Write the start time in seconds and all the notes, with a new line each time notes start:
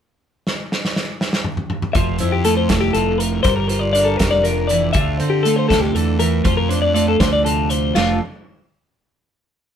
0.47 snare
0.72 snare
0.85 snare
0.96 snare
1.21 snare
1.33 snare
1.44 mid tom
1.57 mid tom
1.70 mid tom
1.82 mid tom
1.93 F1 F3 F4 E5, kick, closed hi-hat
2.19 F2 E4 C5, closed hi-hat
2.32 G4
2.45 A3 F4 A4, closed hi-hat
2.57 C5
2.69 F1 E4 A4, kick, snare, closed hi-hat
2.81 G4
2.93 F1 C3 F4 A4, closed hi-hat
3.18 A#4, closed hi-hat
3.43 G1 G3 A#4 C5, kick, closed hi-hat
3.57 A#4
3.68 F4 C5, closed hi-hat
3.79 D5
3.93 D4 A#4 D5, closed hi-hat
4.04 A4
4.17 F1 G3 A#4, kick, snare, closed hi-hat
4.31 D5
4.44 F3 A#4, closed hi-hat
4.67 E3 D5, closed hi-hat
4.93 D2 D3 F4 E5, kick, closed hi-hat
5.18 D3 C4 C5, closed hi-hat
5.30 G4
5.43 A3 F4 A4, closed hi-hat
5.56 C5
5.69 D2 C3 A4, kick, snare, closed hi-hat
5.81 G4
5.95 E2 D3 A4, closed hi-hat
6.19 E3 A#4, closed hi-hat
6.44 F2 F3 F4 C5, kick, closed hi-hat
6.57 A#4
6.69 D4 C5, closed hi-hat
6.82 D5
6.94 A3 F4 D5, closed hi-hat
7.08 A4
7.20 D2 D4 C5, kick, snare, closed hi-hat
7.33 D5
7.43 C3 F4 A4, closed hi-hat
7.70 C5, closed hi-hat
7.95 F1 F3 A3 D4 F4 A4, snare, crash